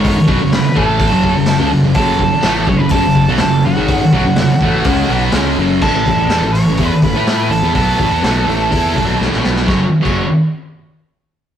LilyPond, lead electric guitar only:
\new Staff \with { instrumentName = "Lead electric guitar" } { \time 4/4 \key fis \minor \tempo 4 = 124 cis''4 b'8 a'2 r8 | a'4. cis''16 b'16 a'4 a'8 fis'8~ | fis'2. r4 | a'4. cis''4 b'4 a'8 |
a'2. r4 | cis''16 r8 cis''8 r2 r8. | }